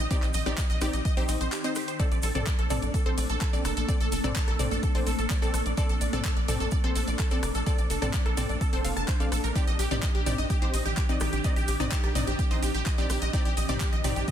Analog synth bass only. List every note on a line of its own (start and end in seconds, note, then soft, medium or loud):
0.23 0.30 A#1 medium
0.34 0.42 A#1 loud
0.46 0.54 A#1 medium
0.70 0.78 A#1 medium
0.82 0.90 A#1 medium
0.94 1.01 A#1 medium
1.17 1.25 A#1 medium
1.29 1.37 A#1 loud
1.41 1.49 A#1 medium
2.12 2.19 A#1 medium
2.23 2.31 A#1 loud
2.35 2.43 A#1 medium
2.59 2.67 A#1 medium
2.71 2.79 A#1 loud
2.82 2.90 A#1 medium
3.06 3.14 A#1 medium
3.18 3.26 A#1 medium
3.30 3.38 A#1 medium
3.54 3.61 A#1 medium
3.65 3.73 F1 loud
3.77 3.85 A#1 medium
4.01 4.08 A#1 medium
4.12 4.20 F1 loud
4.24 4.32 A#1 loud
4.48 4.56 A#1 medium
4.60 4.68 A#1 loud
4.72 4.79 A#1 medium
4.95 5.03 A#1 medium
5.07 5.15 A#1 loud
5.19 5.27 A#1 medium
5.42 5.50 A#1 medium
5.54 5.62 A#1 loud
5.66 5.74 A#1 loud
5.90 5.97 A#1 medium
6.01 6.09 A#1 loud
6.13 6.21 A#1 medium
6.37 6.45 A#1 medium
6.48 6.57 A#1 loud
6.60 6.68 A#1 medium
6.84 6.92 A#1 medium
6.96 7.04 A#1 loud
7.08 7.16 A#1 medium
7.31 7.39 A#1 medium
7.43 7.51 F1 loud
7.55 7.63 A#1 medium
7.79 7.86 A#1 medium
7.90 7.98 F1 loud
8.02 8.10 A#1 medium
8.26 8.34 A#1 medium
8.38 8.46 A#1 medium
8.49 8.57 A#1 medium
8.73 8.81 F1 medium
8.85 8.93 F1 loud
8.97 9.05 F1 medium
9.20 9.28 A#1 medium
9.32 9.40 A#1 loud
9.44 9.52 A#1 medium
9.68 9.75 A#1 medium
9.79 9.87 A#1 loud
9.91 9.99 A#1 medium
10.15 10.23 A#1 medium
10.26 10.34 A#1 loud
10.38 10.46 A#1 medium
10.62 10.70 A#1 medium
10.74 10.82 A#1 loud
10.86 10.94 A#1 medium
11.09 11.17 A#1 medium
11.21 11.29 A#1 loud
11.33 11.41 A#1 medium
11.57 11.64 A#1 medium
11.68 11.76 A#1 loud
11.80 11.88 A#1 medium
12.04 12.12 A#1 medium
12.15 12.23 A#1 loud
12.27 12.35 A#1 medium
12.51 12.59 A#1 medium
12.63 12.71 A#1 loud
12.75 12.82 A#1 medium
12.98 13.06 A#1 medium
13.10 13.18 A#1 loud
13.22 13.30 A#1 loud
13.46 13.53 A#1 medium
13.57 13.65 A#1 loud
13.69 13.77 A#1 medium
13.93 14.01 A#1 medium
14.05 14.12 A#1 loud
14.17 14.24 A#1 medium